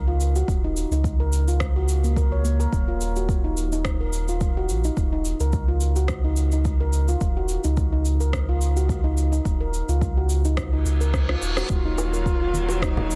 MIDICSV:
0, 0, Header, 1, 7, 480
1, 0, Start_track
1, 0, Key_signature, -6, "minor"
1, 0, Tempo, 560748
1, 413, Time_signature, 4, 2, 24, 8
1, 11259, End_track
2, 0, Start_track
2, 0, Title_t, "Handpan"
2, 0, Program_c, 0, 114
2, 64, Note_on_c, 0, 65, 74
2, 290, Note_off_c, 0, 65, 0
2, 306, Note_on_c, 0, 66, 77
2, 531, Note_off_c, 0, 66, 0
2, 550, Note_on_c, 0, 63, 72
2, 651, Note_off_c, 0, 63, 0
2, 788, Note_on_c, 0, 63, 72
2, 1012, Note_off_c, 0, 63, 0
2, 1026, Note_on_c, 0, 70, 73
2, 1129, Note_off_c, 0, 70, 0
2, 1267, Note_on_c, 0, 65, 70
2, 1492, Note_off_c, 0, 65, 0
2, 1507, Note_on_c, 0, 66, 74
2, 1604, Note_off_c, 0, 66, 0
2, 1746, Note_on_c, 0, 58, 67
2, 1807, Note_off_c, 0, 58, 0
2, 1859, Note_on_c, 0, 70, 76
2, 1979, Note_off_c, 0, 70, 0
2, 1986, Note_on_c, 0, 73, 72
2, 2089, Note_off_c, 0, 73, 0
2, 2094, Note_on_c, 0, 58, 88
2, 2210, Note_off_c, 0, 58, 0
2, 2224, Note_on_c, 0, 70, 93
2, 2328, Note_off_c, 0, 70, 0
2, 2465, Note_on_c, 0, 65, 71
2, 2691, Note_off_c, 0, 65, 0
2, 2709, Note_on_c, 0, 66, 69
2, 2933, Note_off_c, 0, 66, 0
2, 2947, Note_on_c, 0, 63, 70
2, 3050, Note_off_c, 0, 63, 0
2, 3189, Note_on_c, 0, 63, 72
2, 3413, Note_off_c, 0, 63, 0
2, 3428, Note_on_c, 0, 70, 71
2, 3530, Note_off_c, 0, 70, 0
2, 3670, Note_on_c, 0, 65, 65
2, 3894, Note_off_c, 0, 65, 0
2, 3913, Note_on_c, 0, 66, 73
2, 4135, Note_off_c, 0, 66, 0
2, 4149, Note_on_c, 0, 63, 71
2, 4251, Note_off_c, 0, 63, 0
2, 4387, Note_on_c, 0, 63, 77
2, 4612, Note_off_c, 0, 63, 0
2, 4627, Note_on_c, 0, 70, 71
2, 4730, Note_off_c, 0, 70, 0
2, 4864, Note_on_c, 0, 65, 68
2, 5090, Note_off_c, 0, 65, 0
2, 5102, Note_on_c, 0, 66, 77
2, 5329, Note_off_c, 0, 66, 0
2, 5345, Note_on_c, 0, 63, 75
2, 5449, Note_off_c, 0, 63, 0
2, 5588, Note_on_c, 0, 63, 68
2, 5813, Note_off_c, 0, 63, 0
2, 5824, Note_on_c, 0, 70, 76
2, 5928, Note_off_c, 0, 70, 0
2, 6065, Note_on_c, 0, 65, 73
2, 6291, Note_off_c, 0, 65, 0
2, 6306, Note_on_c, 0, 66, 70
2, 6531, Note_off_c, 0, 66, 0
2, 6544, Note_on_c, 0, 63, 79
2, 6648, Note_off_c, 0, 63, 0
2, 6784, Note_on_c, 0, 63, 73
2, 7010, Note_off_c, 0, 63, 0
2, 7022, Note_on_c, 0, 70, 76
2, 7127, Note_off_c, 0, 70, 0
2, 7266, Note_on_c, 0, 65, 75
2, 7491, Note_off_c, 0, 65, 0
2, 7503, Note_on_c, 0, 66, 71
2, 7730, Note_off_c, 0, 66, 0
2, 7738, Note_on_c, 0, 63, 76
2, 7845, Note_off_c, 0, 63, 0
2, 7979, Note_on_c, 0, 63, 74
2, 8208, Note_off_c, 0, 63, 0
2, 8222, Note_on_c, 0, 70, 75
2, 8327, Note_off_c, 0, 70, 0
2, 8466, Note_on_c, 0, 65, 70
2, 8691, Note_off_c, 0, 65, 0
2, 8707, Note_on_c, 0, 66, 69
2, 8932, Note_off_c, 0, 66, 0
2, 8945, Note_on_c, 0, 63, 75
2, 9049, Note_off_c, 0, 63, 0
2, 9184, Note_on_c, 0, 63, 68
2, 9411, Note_off_c, 0, 63, 0
2, 9422, Note_on_c, 0, 70, 72
2, 9527, Note_off_c, 0, 70, 0
2, 9663, Note_on_c, 0, 65, 67
2, 9890, Note_off_c, 0, 65, 0
2, 9907, Note_on_c, 0, 66, 70
2, 10132, Note_off_c, 0, 66, 0
2, 10145, Note_on_c, 0, 63, 69
2, 10371, Note_off_c, 0, 63, 0
2, 10385, Note_on_c, 0, 70, 69
2, 10489, Note_off_c, 0, 70, 0
2, 10626, Note_on_c, 0, 65, 72
2, 10851, Note_off_c, 0, 65, 0
2, 10863, Note_on_c, 0, 66, 74
2, 10962, Note_off_c, 0, 66, 0
2, 10974, Note_on_c, 0, 63, 83
2, 11090, Note_off_c, 0, 63, 0
2, 11103, Note_on_c, 0, 63, 75
2, 11208, Note_off_c, 0, 63, 0
2, 11259, End_track
3, 0, Start_track
3, 0, Title_t, "Duduk"
3, 0, Program_c, 1, 69
3, 10020, Note_on_c, 1, 65, 96
3, 10972, Note_on_c, 1, 63, 92
3, 10985, Note_off_c, 1, 65, 0
3, 11259, Note_off_c, 1, 63, 0
3, 11259, End_track
4, 0, Start_track
4, 0, Title_t, "String section"
4, 0, Program_c, 2, 48
4, 10012, Note_on_c, 2, 51, 72
4, 10012, Note_on_c, 2, 54, 82
4, 10013, Note_on_c, 2, 58, 69
4, 10015, Note_on_c, 2, 77, 67
4, 11259, Note_off_c, 2, 51, 0
4, 11259, Note_off_c, 2, 54, 0
4, 11259, Note_off_c, 2, 58, 0
4, 11259, Note_off_c, 2, 77, 0
4, 11259, End_track
5, 0, Start_track
5, 0, Title_t, "Sub bass"
5, 0, Program_c, 3, 38
5, 0, Note_on_c, 3, 37, 97
5, 365, Note_off_c, 3, 37, 0
5, 411, Note_on_c, 3, 27, 92
5, 726, Note_off_c, 3, 27, 0
5, 776, Note_on_c, 3, 37, 99
5, 2282, Note_off_c, 3, 37, 0
5, 2334, Note_on_c, 3, 27, 93
5, 4011, Note_on_c, 3, 34, 70
5, 4024, Note_off_c, 3, 27, 0
5, 4193, Note_off_c, 3, 34, 0
5, 4253, Note_on_c, 3, 27, 101
5, 4567, Note_off_c, 3, 27, 0
5, 4619, Note_on_c, 3, 37, 92
5, 6124, Note_off_c, 3, 37, 0
5, 6170, Note_on_c, 3, 27, 101
5, 6485, Note_off_c, 3, 27, 0
5, 6541, Note_on_c, 3, 37, 89
5, 8045, Note_off_c, 3, 37, 0
5, 8091, Note_on_c, 3, 27, 98
5, 8406, Note_off_c, 3, 27, 0
5, 8458, Note_on_c, 3, 37, 94
5, 9282, Note_off_c, 3, 37, 0
5, 9288, Note_on_c, 3, 37, 86
5, 9723, Note_off_c, 3, 37, 0
5, 9769, Note_on_c, 3, 27, 73
5, 9952, Note_off_c, 3, 27, 0
5, 10013, Note_on_c, 3, 27, 96
5, 11259, Note_off_c, 3, 27, 0
5, 11259, End_track
6, 0, Start_track
6, 0, Title_t, "Reverse cymbal"
6, 0, Program_c, 4, 119
6, 9054, Note_on_c, 4, 60, 54
6, 10014, Note_off_c, 4, 60, 0
6, 11259, End_track
7, 0, Start_track
7, 0, Title_t, "Drums"
7, 176, Note_on_c, 9, 69, 77
7, 262, Note_off_c, 9, 69, 0
7, 306, Note_on_c, 9, 69, 41
7, 391, Note_off_c, 9, 69, 0
7, 412, Note_on_c, 9, 36, 105
7, 418, Note_on_c, 9, 69, 34
7, 498, Note_off_c, 9, 36, 0
7, 504, Note_off_c, 9, 69, 0
7, 657, Note_on_c, 9, 69, 75
7, 742, Note_off_c, 9, 69, 0
7, 788, Note_on_c, 9, 69, 43
7, 874, Note_off_c, 9, 69, 0
7, 892, Note_on_c, 9, 36, 109
7, 897, Note_on_c, 9, 69, 32
7, 977, Note_off_c, 9, 36, 0
7, 983, Note_off_c, 9, 69, 0
7, 1136, Note_on_c, 9, 69, 78
7, 1221, Note_off_c, 9, 69, 0
7, 1268, Note_on_c, 9, 69, 44
7, 1354, Note_off_c, 9, 69, 0
7, 1371, Note_on_c, 9, 37, 76
7, 1372, Note_on_c, 9, 36, 102
7, 1375, Note_on_c, 9, 69, 34
7, 1457, Note_off_c, 9, 37, 0
7, 1458, Note_off_c, 9, 36, 0
7, 1460, Note_off_c, 9, 69, 0
7, 1614, Note_on_c, 9, 69, 78
7, 1700, Note_off_c, 9, 69, 0
7, 1748, Note_on_c, 9, 69, 41
7, 1833, Note_off_c, 9, 69, 0
7, 1853, Note_on_c, 9, 36, 100
7, 1858, Note_on_c, 9, 69, 32
7, 1938, Note_off_c, 9, 36, 0
7, 1944, Note_off_c, 9, 69, 0
7, 2098, Note_on_c, 9, 69, 75
7, 2183, Note_off_c, 9, 69, 0
7, 2229, Note_on_c, 9, 69, 42
7, 2314, Note_off_c, 9, 69, 0
7, 2333, Note_on_c, 9, 36, 95
7, 2337, Note_on_c, 9, 69, 33
7, 2419, Note_off_c, 9, 36, 0
7, 2423, Note_off_c, 9, 69, 0
7, 2577, Note_on_c, 9, 69, 77
7, 2663, Note_off_c, 9, 69, 0
7, 2706, Note_on_c, 9, 69, 40
7, 2792, Note_off_c, 9, 69, 0
7, 2814, Note_on_c, 9, 36, 106
7, 2819, Note_on_c, 9, 69, 30
7, 2899, Note_off_c, 9, 36, 0
7, 2904, Note_off_c, 9, 69, 0
7, 3058, Note_on_c, 9, 69, 76
7, 3143, Note_off_c, 9, 69, 0
7, 3188, Note_on_c, 9, 69, 44
7, 3273, Note_off_c, 9, 69, 0
7, 3293, Note_on_c, 9, 37, 72
7, 3294, Note_on_c, 9, 36, 97
7, 3296, Note_on_c, 9, 69, 30
7, 3378, Note_off_c, 9, 37, 0
7, 3380, Note_off_c, 9, 36, 0
7, 3382, Note_off_c, 9, 69, 0
7, 3536, Note_on_c, 9, 69, 74
7, 3621, Note_off_c, 9, 69, 0
7, 3666, Note_on_c, 9, 69, 40
7, 3752, Note_off_c, 9, 69, 0
7, 3773, Note_on_c, 9, 69, 31
7, 3774, Note_on_c, 9, 36, 95
7, 3859, Note_off_c, 9, 69, 0
7, 3860, Note_off_c, 9, 36, 0
7, 4016, Note_on_c, 9, 69, 69
7, 4101, Note_off_c, 9, 69, 0
7, 4145, Note_on_c, 9, 69, 41
7, 4230, Note_off_c, 9, 69, 0
7, 4254, Note_on_c, 9, 36, 91
7, 4256, Note_on_c, 9, 69, 30
7, 4339, Note_off_c, 9, 36, 0
7, 4341, Note_off_c, 9, 69, 0
7, 4493, Note_on_c, 9, 69, 69
7, 4579, Note_off_c, 9, 69, 0
7, 4623, Note_on_c, 9, 69, 38
7, 4709, Note_off_c, 9, 69, 0
7, 4731, Note_on_c, 9, 69, 28
7, 4734, Note_on_c, 9, 36, 105
7, 4816, Note_off_c, 9, 69, 0
7, 4820, Note_off_c, 9, 36, 0
7, 4971, Note_on_c, 9, 69, 72
7, 5057, Note_off_c, 9, 69, 0
7, 5101, Note_on_c, 9, 69, 40
7, 5187, Note_off_c, 9, 69, 0
7, 5206, Note_on_c, 9, 37, 68
7, 5209, Note_on_c, 9, 69, 32
7, 5213, Note_on_c, 9, 36, 93
7, 5292, Note_off_c, 9, 37, 0
7, 5295, Note_off_c, 9, 69, 0
7, 5299, Note_off_c, 9, 36, 0
7, 5449, Note_on_c, 9, 69, 79
7, 5534, Note_off_c, 9, 69, 0
7, 5579, Note_on_c, 9, 69, 39
7, 5665, Note_off_c, 9, 69, 0
7, 5692, Note_on_c, 9, 36, 94
7, 5692, Note_on_c, 9, 69, 30
7, 5777, Note_off_c, 9, 69, 0
7, 5778, Note_off_c, 9, 36, 0
7, 5932, Note_on_c, 9, 69, 72
7, 6017, Note_off_c, 9, 69, 0
7, 6063, Note_on_c, 9, 69, 42
7, 6149, Note_off_c, 9, 69, 0
7, 6171, Note_on_c, 9, 69, 31
7, 6172, Note_on_c, 9, 36, 92
7, 6257, Note_off_c, 9, 69, 0
7, 6258, Note_off_c, 9, 36, 0
7, 6408, Note_on_c, 9, 69, 71
7, 6494, Note_off_c, 9, 69, 0
7, 6539, Note_on_c, 9, 69, 39
7, 6624, Note_off_c, 9, 69, 0
7, 6651, Note_on_c, 9, 69, 29
7, 6653, Note_on_c, 9, 36, 102
7, 6737, Note_off_c, 9, 69, 0
7, 6738, Note_off_c, 9, 36, 0
7, 6894, Note_on_c, 9, 69, 70
7, 6979, Note_off_c, 9, 69, 0
7, 7025, Note_on_c, 9, 69, 42
7, 7110, Note_off_c, 9, 69, 0
7, 7132, Note_on_c, 9, 36, 92
7, 7132, Note_on_c, 9, 37, 76
7, 7136, Note_on_c, 9, 69, 31
7, 7217, Note_off_c, 9, 36, 0
7, 7218, Note_off_c, 9, 37, 0
7, 7221, Note_off_c, 9, 69, 0
7, 7374, Note_on_c, 9, 69, 75
7, 7460, Note_off_c, 9, 69, 0
7, 7504, Note_on_c, 9, 69, 40
7, 7590, Note_off_c, 9, 69, 0
7, 7612, Note_on_c, 9, 36, 97
7, 7617, Note_on_c, 9, 69, 32
7, 7697, Note_off_c, 9, 36, 0
7, 7703, Note_off_c, 9, 69, 0
7, 7854, Note_on_c, 9, 69, 69
7, 7940, Note_off_c, 9, 69, 0
7, 7985, Note_on_c, 9, 69, 42
7, 8071, Note_off_c, 9, 69, 0
7, 8092, Note_on_c, 9, 36, 99
7, 8096, Note_on_c, 9, 69, 31
7, 8177, Note_off_c, 9, 36, 0
7, 8181, Note_off_c, 9, 69, 0
7, 8337, Note_on_c, 9, 69, 72
7, 8422, Note_off_c, 9, 69, 0
7, 8465, Note_on_c, 9, 69, 41
7, 8551, Note_off_c, 9, 69, 0
7, 8572, Note_on_c, 9, 36, 105
7, 8578, Note_on_c, 9, 69, 29
7, 8658, Note_off_c, 9, 36, 0
7, 8663, Note_off_c, 9, 69, 0
7, 8813, Note_on_c, 9, 69, 67
7, 8899, Note_off_c, 9, 69, 0
7, 8945, Note_on_c, 9, 69, 40
7, 9030, Note_off_c, 9, 69, 0
7, 9049, Note_on_c, 9, 37, 75
7, 9052, Note_on_c, 9, 36, 96
7, 9053, Note_on_c, 9, 69, 31
7, 9135, Note_off_c, 9, 37, 0
7, 9137, Note_off_c, 9, 36, 0
7, 9138, Note_off_c, 9, 69, 0
7, 9295, Note_on_c, 9, 69, 78
7, 9381, Note_off_c, 9, 69, 0
7, 9425, Note_on_c, 9, 69, 42
7, 9511, Note_off_c, 9, 69, 0
7, 9532, Note_on_c, 9, 36, 99
7, 9534, Note_on_c, 9, 37, 58
7, 9537, Note_on_c, 9, 69, 31
7, 9618, Note_off_c, 9, 36, 0
7, 9619, Note_off_c, 9, 37, 0
7, 9623, Note_off_c, 9, 69, 0
7, 9665, Note_on_c, 9, 37, 58
7, 9750, Note_off_c, 9, 37, 0
7, 9776, Note_on_c, 9, 69, 71
7, 9862, Note_off_c, 9, 69, 0
7, 9902, Note_on_c, 9, 37, 75
7, 9906, Note_on_c, 9, 69, 41
7, 9988, Note_off_c, 9, 37, 0
7, 9991, Note_off_c, 9, 69, 0
7, 10013, Note_on_c, 9, 36, 93
7, 10014, Note_on_c, 9, 69, 34
7, 10099, Note_off_c, 9, 36, 0
7, 10100, Note_off_c, 9, 69, 0
7, 10256, Note_on_c, 9, 60, 50
7, 10258, Note_on_c, 9, 69, 78
7, 10342, Note_off_c, 9, 60, 0
7, 10343, Note_off_c, 9, 69, 0
7, 10389, Note_on_c, 9, 69, 42
7, 10475, Note_off_c, 9, 69, 0
7, 10493, Note_on_c, 9, 36, 107
7, 10501, Note_on_c, 9, 69, 31
7, 10579, Note_off_c, 9, 36, 0
7, 10586, Note_off_c, 9, 69, 0
7, 10731, Note_on_c, 9, 63, 38
7, 10741, Note_on_c, 9, 69, 76
7, 10816, Note_off_c, 9, 63, 0
7, 10827, Note_off_c, 9, 69, 0
7, 10859, Note_on_c, 9, 60, 49
7, 10871, Note_on_c, 9, 69, 45
7, 10945, Note_off_c, 9, 60, 0
7, 10957, Note_off_c, 9, 69, 0
7, 10974, Note_on_c, 9, 36, 98
7, 10978, Note_on_c, 9, 37, 77
7, 10981, Note_on_c, 9, 69, 33
7, 11059, Note_off_c, 9, 36, 0
7, 11063, Note_off_c, 9, 37, 0
7, 11067, Note_off_c, 9, 69, 0
7, 11104, Note_on_c, 9, 64, 83
7, 11190, Note_off_c, 9, 64, 0
7, 11220, Note_on_c, 9, 69, 78
7, 11259, Note_off_c, 9, 69, 0
7, 11259, End_track
0, 0, End_of_file